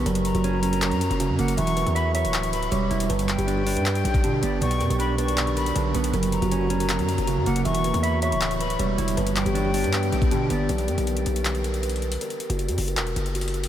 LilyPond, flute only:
\new Staff \with { instrumentName = "Flute" } { \time 4/4 \key b \minor \tempo 4 = 158 r8 ais''2. fis''8 | cis'''4 b''8 cis'''4 b''8 r4 | r8 g''2. d''8 | cis'''4 b''8 cis'''4 b''8 r4 |
r8 ais''2. fis''8 | cis'''4 b''8 cis'''4 b''8 r4 | r8 g''2. d''8 | r1 |
r1 | }